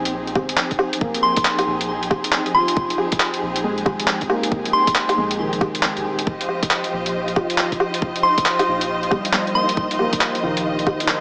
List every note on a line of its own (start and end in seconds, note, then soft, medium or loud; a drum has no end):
0.00 0.34 A#1 loud
0.00 6.23 F3 medium
0.00 0.25 C4 medium
0.00 6.23 C4 medium
0.00 6.23 D#4 medium
0.00 11.20 G4 medium
0.00 6.23 G#4 medium
0.05 closed hi-hat medium
0.27 closed hi-hat soft
0.35 0.56 G#1 medium
0.35 1.13 C4 medium
0.35 kick loud
0.35 low woodblock medium
0.49 closed hi-hat medium
0.57 clap loud
0.71 kick medium
0.71 closed hi-hat soft
0.79 low woodblock medium
0.93 closed hi-hat medium
1.01 1.22 F1 loud
1.01 1.78 A#3 medium
1.01 kick loud
1.14 closed hi-hat soft
1.23 1.67 C6 medium
1.36 kick loud
1.36 closed hi-hat medium
1.45 clap loud
1.59 closed hi-hat soft
1.59 low woodblock medium
1.66 2.09 A#1 loud
1.81 closed hi-hat medium
2.03 closed hi-hat soft
2.11 kick loud
2.11 low woodblock medium
2.24 closed hi-hat medium
2.32 clap loud
2.46 closed hi-hat soft
2.55 3.32 F3 medium
2.55 2.90 C6 medium
2.68 closed hi-hat medium
2.76 2.97 F1 loud
2.76 kick loud
2.90 closed hi-hat soft
2.98 low woodblock soft
3.12 kick loud
3.12 closed hi-hat medium
3.20 clap loud
3.34 closed hi-hat soft
3.42 3.85 A#1 loud
3.56 closed hi-hat medium
3.64 4.41 G#3 medium
3.78 closed hi-hat soft
3.86 4.06 G#1 medium
3.86 kick loud
3.86 low woodblock medium
4.00 closed hi-hat medium
4.07 clap loud
4.21 kick medium
4.21 closed hi-hat soft
4.30 5.07 A#3 medium
4.30 low woodblock medium
4.43 closed hi-hat medium
4.51 4.72 F1 loud
4.51 kick loud
4.65 closed hi-hat soft
4.73 5.17 C6 medium
4.87 kick loud
4.87 closed hi-hat medium
4.95 clap loud
5.09 closed hi-hat soft
5.09 low woodblock medium
5.17 5.60 A#1 loud
5.17 5.94 G#3 medium
5.31 closed hi-hat medium
5.39 6.16 D#3 medium
5.53 closed hi-hat soft
5.61 kick loud
5.61 low woodblock medium
5.75 closed hi-hat medium
5.83 clap loud
5.97 6.06 G#1 medium
5.97 closed hi-hat soft
6.05 6.25 D#1 medium
6.19 closed hi-hat medium
6.27 6.47 F1 loud
6.27 11.20 F3 medium
6.27 11.20 D#4 medium
6.27 11.20 F4 medium
6.27 11.20 C5 medium
6.27 11.20 D#5 medium
6.27 kick loud
6.41 closed hi-hat soft
6.49 low woodblock soft
6.63 kick loud
6.63 closed hi-hat medium
6.70 clap loud
6.84 closed hi-hat soft
6.93 7.35 A#1 loud
7.06 closed hi-hat medium
7.28 closed hi-hat soft
7.36 7.57 F1 medium
7.36 8.14 F3 medium
7.36 kick loud
7.36 low woodblock medium
7.50 closed hi-hat medium
7.58 clap loud
7.72 kick medium
7.72 closed hi-hat soft
7.80 low woodblock medium
7.94 closed hi-hat medium
8.02 8.22 F1 loud
8.02 kick loud
8.16 closed hi-hat soft
8.23 8.67 C6 medium
8.38 kick loud
8.38 closed hi-hat medium
8.45 clap loud
8.59 closed hi-hat soft
8.59 low woodblock medium
8.67 9.10 A#1 loud
8.81 closed hi-hat medium
9.03 closed hi-hat soft
9.11 9.32 G3 medium
9.11 kick loud
9.11 low woodblock medium
9.25 closed hi-hat medium
9.33 10.10 G3 medium
9.33 clap loud
9.47 closed hi-hat soft
9.52 9.98 A#3 medium
9.52 9.91 C6 medium
9.69 closed hi-hat medium
9.77 9.98 F1 loud
9.77 kick loud
9.91 closed hi-hat soft
9.99 10.76 A#3 medium
9.99 low woodblock soft
10.13 kick loud
10.13 closed hi-hat medium
10.21 clap loud
10.35 closed hi-hat soft
10.43 10.85 A#1 loud
10.43 11.20 D#3 medium
10.57 closed hi-hat medium
10.79 closed hi-hat soft
10.87 11.07 F1 medium
10.87 kick loud
10.87 low woodblock medium
11.00 closed hi-hat medium
11.08 clap loud